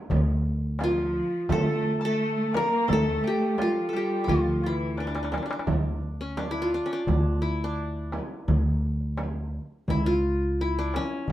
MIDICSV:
0, 0, Header, 1, 7, 480
1, 0, Start_track
1, 0, Tempo, 699301
1, 68, Time_signature, 4, 2, 24, 8
1, 7771, End_track
2, 0, Start_track
2, 0, Title_t, "Mandolin"
2, 0, Program_c, 0, 25
2, 549, Note_on_c, 0, 65, 71
2, 1029, Note_on_c, 0, 69, 93
2, 1041, Note_off_c, 0, 65, 0
2, 1370, Note_off_c, 0, 69, 0
2, 1378, Note_on_c, 0, 69, 84
2, 1742, Note_off_c, 0, 69, 0
2, 1745, Note_on_c, 0, 70, 87
2, 1974, Note_off_c, 0, 70, 0
2, 1976, Note_on_c, 0, 69, 95
2, 2202, Note_off_c, 0, 69, 0
2, 2222, Note_on_c, 0, 67, 78
2, 2455, Note_off_c, 0, 67, 0
2, 2457, Note_on_c, 0, 65, 75
2, 2696, Note_off_c, 0, 65, 0
2, 2698, Note_on_c, 0, 67, 77
2, 2936, Note_off_c, 0, 67, 0
2, 2939, Note_on_c, 0, 65, 81
2, 3178, Note_off_c, 0, 65, 0
2, 3181, Note_on_c, 0, 64, 64
2, 3411, Note_off_c, 0, 64, 0
2, 3414, Note_on_c, 0, 62, 59
2, 3870, Note_off_c, 0, 62, 0
2, 7771, End_track
3, 0, Start_track
3, 0, Title_t, "Qanun"
3, 0, Program_c, 1, 107
3, 574, Note_on_c, 1, 65, 99
3, 1046, Note_on_c, 1, 69, 100
3, 1404, Note_off_c, 1, 69, 0
3, 1407, Note_on_c, 1, 69, 98
3, 1497, Note_off_c, 1, 65, 0
3, 1762, Note_on_c, 1, 70, 99
3, 1803, Note_off_c, 1, 69, 0
3, 2009, Note_on_c, 1, 69, 103
3, 2050, Note_off_c, 1, 70, 0
3, 2247, Note_on_c, 1, 67, 86
3, 2482, Note_on_c, 1, 65, 91
3, 2666, Note_off_c, 1, 69, 0
3, 2669, Note_on_c, 1, 69, 63
3, 2719, Note_off_c, 1, 67, 0
3, 2721, Note_on_c, 1, 67, 85
3, 2911, Note_on_c, 1, 64, 62
3, 2944, Note_off_c, 1, 65, 0
3, 2947, Note_on_c, 1, 65, 83
3, 2988, Note_off_c, 1, 64, 0
3, 3201, Note_on_c, 1, 64, 84
3, 3242, Note_off_c, 1, 65, 0
3, 3434, Note_on_c, 1, 62, 59
3, 3473, Note_off_c, 1, 69, 0
3, 3478, Note_off_c, 1, 62, 0
3, 3480, Note_on_c, 1, 62, 50
3, 3529, Note_off_c, 1, 62, 0
3, 3531, Note_on_c, 1, 62, 54
3, 3583, Note_off_c, 1, 67, 0
3, 3585, Note_off_c, 1, 62, 0
3, 3588, Note_on_c, 1, 62, 53
3, 3648, Note_off_c, 1, 62, 0
3, 3650, Note_on_c, 1, 62, 60
3, 3687, Note_off_c, 1, 62, 0
3, 3690, Note_on_c, 1, 62, 47
3, 3743, Note_off_c, 1, 62, 0
3, 3746, Note_on_c, 1, 62, 59
3, 3790, Note_off_c, 1, 62, 0
3, 3793, Note_on_c, 1, 62, 48
3, 4157, Note_off_c, 1, 64, 0
3, 4261, Note_on_c, 1, 61, 72
3, 4302, Note_off_c, 1, 62, 0
3, 4374, Note_on_c, 1, 62, 75
3, 4415, Note_off_c, 1, 61, 0
3, 4468, Note_on_c, 1, 64, 83
3, 4543, Note_on_c, 1, 65, 85
3, 4584, Note_off_c, 1, 64, 0
3, 4625, Note_off_c, 1, 62, 0
3, 4628, Note_on_c, 1, 62, 71
3, 4707, Note_on_c, 1, 61, 66
3, 4748, Note_off_c, 1, 62, 0
3, 4755, Note_on_c, 1, 62, 80
3, 4796, Note_off_c, 1, 61, 0
3, 5092, Note_on_c, 1, 64, 77
3, 5133, Note_off_c, 1, 65, 0
3, 5241, Note_off_c, 1, 62, 0
3, 5244, Note_on_c, 1, 62, 65
3, 6048, Note_off_c, 1, 64, 0
3, 6269, Note_off_c, 1, 62, 0
3, 6796, Note_on_c, 1, 64, 85
3, 6907, Note_on_c, 1, 65, 98
3, 6948, Note_off_c, 1, 64, 0
3, 7283, Note_on_c, 1, 64, 88
3, 7324, Note_off_c, 1, 65, 0
3, 7403, Note_on_c, 1, 62, 82
3, 7523, Note_on_c, 1, 61, 85
3, 7564, Note_off_c, 1, 62, 0
3, 7771, Note_off_c, 1, 61, 0
3, 7771, Note_off_c, 1, 64, 0
3, 7771, End_track
4, 0, Start_track
4, 0, Title_t, "Cello section"
4, 0, Program_c, 2, 48
4, 554, Note_on_c, 2, 53, 77
4, 1001, Note_off_c, 2, 53, 0
4, 1035, Note_on_c, 2, 57, 87
4, 1364, Note_off_c, 2, 57, 0
4, 1396, Note_on_c, 2, 57, 90
4, 1725, Note_off_c, 2, 57, 0
4, 1747, Note_on_c, 2, 58, 86
4, 1985, Note_off_c, 2, 58, 0
4, 1992, Note_on_c, 2, 57, 91
4, 2461, Note_on_c, 2, 53, 73
4, 2467, Note_off_c, 2, 57, 0
4, 2697, Note_on_c, 2, 55, 79
4, 2701, Note_off_c, 2, 53, 0
4, 2922, Note_off_c, 2, 55, 0
4, 2940, Note_on_c, 2, 53, 77
4, 3181, Note_off_c, 2, 53, 0
4, 3183, Note_on_c, 2, 52, 66
4, 3419, Note_on_c, 2, 50, 66
4, 3422, Note_off_c, 2, 52, 0
4, 3901, Note_off_c, 2, 50, 0
4, 7771, End_track
5, 0, Start_track
5, 0, Title_t, "Upright bass"
5, 0, Program_c, 3, 32
5, 73, Note_on_c, 3, 38, 95
5, 813, Note_off_c, 3, 38, 0
5, 1033, Note_on_c, 3, 50, 91
5, 1773, Note_off_c, 3, 50, 0
5, 1984, Note_on_c, 3, 38, 88
5, 2169, Note_off_c, 3, 38, 0
5, 2942, Note_on_c, 3, 38, 90
5, 3687, Note_off_c, 3, 38, 0
5, 3902, Note_on_c, 3, 38, 78
5, 4647, Note_off_c, 3, 38, 0
5, 4858, Note_on_c, 3, 38, 94
5, 5606, Note_off_c, 3, 38, 0
5, 5820, Note_on_c, 3, 38, 96
5, 6569, Note_off_c, 3, 38, 0
5, 6780, Note_on_c, 3, 37, 85
5, 7530, Note_off_c, 3, 37, 0
5, 7771, End_track
6, 0, Start_track
6, 0, Title_t, "Darbuka"
6, 69, Note_on_c, 9, 64, 90
6, 137, Note_off_c, 9, 64, 0
6, 309, Note_on_c, 9, 62, 25
6, 378, Note_off_c, 9, 62, 0
6, 541, Note_on_c, 9, 63, 60
6, 610, Note_off_c, 9, 63, 0
6, 781, Note_on_c, 9, 62, 27
6, 850, Note_off_c, 9, 62, 0
6, 1025, Note_on_c, 9, 64, 85
6, 1094, Note_off_c, 9, 64, 0
6, 1266, Note_on_c, 9, 62, 25
6, 1335, Note_off_c, 9, 62, 0
6, 1385, Note_on_c, 9, 62, 27
6, 1454, Note_off_c, 9, 62, 0
6, 1750, Note_on_c, 9, 63, 61
6, 1818, Note_off_c, 9, 63, 0
6, 1985, Note_on_c, 9, 64, 75
6, 2054, Note_off_c, 9, 64, 0
6, 2226, Note_on_c, 9, 62, 30
6, 2295, Note_off_c, 9, 62, 0
6, 2343, Note_on_c, 9, 62, 28
6, 2412, Note_off_c, 9, 62, 0
6, 2465, Note_on_c, 9, 63, 61
6, 2534, Note_off_c, 9, 63, 0
6, 2704, Note_on_c, 9, 62, 28
6, 2772, Note_off_c, 9, 62, 0
6, 2941, Note_on_c, 9, 64, 81
6, 3010, Note_off_c, 9, 64, 0
6, 3061, Note_on_c, 9, 62, 29
6, 3129, Note_off_c, 9, 62, 0
6, 3184, Note_on_c, 9, 62, 26
6, 3253, Note_off_c, 9, 62, 0
6, 3301, Note_on_c, 9, 62, 26
6, 3370, Note_off_c, 9, 62, 0
6, 3419, Note_on_c, 9, 63, 52
6, 3482, Note_on_c, 9, 62, 58
6, 3488, Note_off_c, 9, 63, 0
6, 3537, Note_on_c, 9, 63, 67
6, 3550, Note_off_c, 9, 62, 0
6, 3600, Note_on_c, 9, 62, 69
6, 3606, Note_off_c, 9, 63, 0
6, 3664, Note_on_c, 9, 63, 75
6, 3669, Note_off_c, 9, 62, 0
6, 3725, Note_on_c, 9, 62, 78
6, 3732, Note_off_c, 9, 63, 0
6, 3779, Note_on_c, 9, 63, 90
6, 3794, Note_off_c, 9, 62, 0
6, 3839, Note_on_c, 9, 62, 85
6, 3848, Note_off_c, 9, 63, 0
6, 3894, Note_on_c, 9, 64, 102
6, 3908, Note_off_c, 9, 62, 0
6, 3963, Note_off_c, 9, 64, 0
6, 4017, Note_on_c, 9, 62, 22
6, 4086, Note_off_c, 9, 62, 0
6, 4141, Note_on_c, 9, 62, 25
6, 4210, Note_off_c, 9, 62, 0
6, 4261, Note_on_c, 9, 62, 24
6, 4330, Note_off_c, 9, 62, 0
6, 4376, Note_on_c, 9, 63, 64
6, 4445, Note_off_c, 9, 63, 0
6, 4854, Note_on_c, 9, 64, 89
6, 4923, Note_off_c, 9, 64, 0
6, 5219, Note_on_c, 9, 62, 26
6, 5288, Note_off_c, 9, 62, 0
6, 5576, Note_on_c, 9, 63, 58
6, 5645, Note_off_c, 9, 63, 0
6, 5704, Note_on_c, 9, 62, 26
6, 5773, Note_off_c, 9, 62, 0
6, 5823, Note_on_c, 9, 64, 83
6, 5892, Note_off_c, 9, 64, 0
6, 5944, Note_on_c, 9, 62, 22
6, 6013, Note_off_c, 9, 62, 0
6, 6061, Note_on_c, 9, 62, 24
6, 6130, Note_off_c, 9, 62, 0
6, 6182, Note_on_c, 9, 62, 24
6, 6250, Note_off_c, 9, 62, 0
6, 6298, Note_on_c, 9, 63, 63
6, 6366, Note_off_c, 9, 63, 0
6, 6549, Note_on_c, 9, 62, 25
6, 6618, Note_off_c, 9, 62, 0
6, 6783, Note_on_c, 9, 64, 84
6, 6851, Note_off_c, 9, 64, 0
6, 7024, Note_on_c, 9, 62, 22
6, 7093, Note_off_c, 9, 62, 0
6, 7143, Note_on_c, 9, 62, 22
6, 7211, Note_off_c, 9, 62, 0
6, 7508, Note_on_c, 9, 63, 58
6, 7577, Note_off_c, 9, 63, 0
6, 7625, Note_on_c, 9, 62, 22
6, 7694, Note_off_c, 9, 62, 0
6, 7741, Note_on_c, 9, 64, 83
6, 7771, Note_off_c, 9, 64, 0
6, 7771, End_track
7, 0, Start_track
7, 0, Title_t, "Frame drum"
7, 74, Note_on_c, 9, 64, 83
7, 143, Note_off_c, 9, 64, 0
7, 555, Note_on_c, 9, 64, 77
7, 624, Note_off_c, 9, 64, 0
7, 1024, Note_on_c, 9, 64, 91
7, 1092, Note_off_c, 9, 64, 0
7, 1747, Note_on_c, 9, 64, 64
7, 1816, Note_off_c, 9, 64, 0
7, 1979, Note_on_c, 9, 64, 84
7, 2048, Note_off_c, 9, 64, 0
7, 2458, Note_on_c, 9, 64, 61
7, 2526, Note_off_c, 9, 64, 0
7, 2933, Note_on_c, 9, 64, 76
7, 3002, Note_off_c, 9, 64, 0
7, 3654, Note_on_c, 9, 64, 66
7, 3722, Note_off_c, 9, 64, 0
7, 3892, Note_on_c, 9, 64, 81
7, 3960, Note_off_c, 9, 64, 0
7, 4374, Note_on_c, 9, 64, 63
7, 4443, Note_off_c, 9, 64, 0
7, 4861, Note_on_c, 9, 64, 77
7, 4930, Note_off_c, 9, 64, 0
7, 5582, Note_on_c, 9, 64, 67
7, 5650, Note_off_c, 9, 64, 0
7, 5821, Note_on_c, 9, 64, 68
7, 5890, Note_off_c, 9, 64, 0
7, 6303, Note_on_c, 9, 64, 62
7, 6372, Note_off_c, 9, 64, 0
7, 6789, Note_on_c, 9, 64, 72
7, 6857, Note_off_c, 9, 64, 0
7, 7513, Note_on_c, 9, 64, 62
7, 7582, Note_off_c, 9, 64, 0
7, 7771, End_track
0, 0, End_of_file